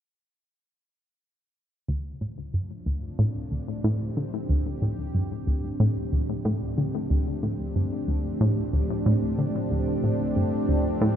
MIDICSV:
0, 0, Header, 1, 3, 480
1, 0, Start_track
1, 0, Key_signature, -1, "minor"
1, 0, Tempo, 652174
1, 1387, Time_signature, 4, 2, 24, 8
1, 8214, End_track
2, 0, Start_track
2, 0, Title_t, "Analog synth pad"
2, 0, Program_c, 0, 89
2, 1388, Note_on_c, 0, 53, 68
2, 1499, Note_on_c, 0, 57, 73
2, 1634, Note_on_c, 0, 62, 79
2, 1935, Note_on_c, 0, 60, 76
2, 2469, Note_on_c, 0, 67, 67
2, 8214, Note_off_c, 0, 53, 0
2, 8214, Note_off_c, 0, 57, 0
2, 8214, Note_off_c, 0, 60, 0
2, 8214, Note_off_c, 0, 62, 0
2, 8214, Note_off_c, 0, 67, 0
2, 8214, End_track
3, 0, Start_track
3, 0, Title_t, "Synth arpeggio sound"
3, 0, Program_c, 1, 84
3, 1387, Note_on_c, 1, 38, 74
3, 1579, Note_off_c, 1, 38, 0
3, 1628, Note_on_c, 1, 45, 66
3, 1820, Note_off_c, 1, 45, 0
3, 1868, Note_on_c, 1, 43, 66
3, 2060, Note_off_c, 1, 43, 0
3, 2107, Note_on_c, 1, 38, 68
3, 2236, Note_off_c, 1, 38, 0
3, 2347, Note_on_c, 1, 45, 88
3, 2476, Note_off_c, 1, 45, 0
3, 2588, Note_on_c, 1, 38, 65
3, 2665, Note_off_c, 1, 38, 0
3, 2828, Note_on_c, 1, 45, 94
3, 3020, Note_off_c, 1, 45, 0
3, 3068, Note_on_c, 1, 50, 71
3, 3196, Note_off_c, 1, 50, 0
3, 3308, Note_on_c, 1, 38, 76
3, 3500, Note_off_c, 1, 38, 0
3, 3547, Note_on_c, 1, 45, 73
3, 3740, Note_off_c, 1, 45, 0
3, 3788, Note_on_c, 1, 43, 66
3, 3980, Note_off_c, 1, 43, 0
3, 4028, Note_on_c, 1, 38, 68
3, 4156, Note_off_c, 1, 38, 0
3, 4268, Note_on_c, 1, 45, 92
3, 4396, Note_off_c, 1, 45, 0
3, 4509, Note_on_c, 1, 38, 69
3, 4585, Note_off_c, 1, 38, 0
3, 4747, Note_on_c, 1, 45, 96
3, 4940, Note_off_c, 1, 45, 0
3, 4988, Note_on_c, 1, 50, 71
3, 5116, Note_off_c, 1, 50, 0
3, 5228, Note_on_c, 1, 38, 75
3, 5420, Note_off_c, 1, 38, 0
3, 5468, Note_on_c, 1, 45, 69
3, 5660, Note_off_c, 1, 45, 0
3, 5708, Note_on_c, 1, 43, 66
3, 5900, Note_off_c, 1, 43, 0
3, 5948, Note_on_c, 1, 38, 70
3, 6076, Note_off_c, 1, 38, 0
3, 6188, Note_on_c, 1, 45, 92
3, 6316, Note_off_c, 1, 45, 0
3, 6427, Note_on_c, 1, 38, 69
3, 6504, Note_off_c, 1, 38, 0
3, 6668, Note_on_c, 1, 45, 94
3, 6860, Note_off_c, 1, 45, 0
3, 6907, Note_on_c, 1, 50, 68
3, 7036, Note_off_c, 1, 50, 0
3, 7148, Note_on_c, 1, 38, 73
3, 7340, Note_off_c, 1, 38, 0
3, 7387, Note_on_c, 1, 45, 67
3, 7579, Note_off_c, 1, 45, 0
3, 7627, Note_on_c, 1, 43, 66
3, 7819, Note_off_c, 1, 43, 0
3, 7867, Note_on_c, 1, 38, 69
3, 7995, Note_off_c, 1, 38, 0
3, 8106, Note_on_c, 1, 45, 96
3, 8214, Note_off_c, 1, 45, 0
3, 8214, End_track
0, 0, End_of_file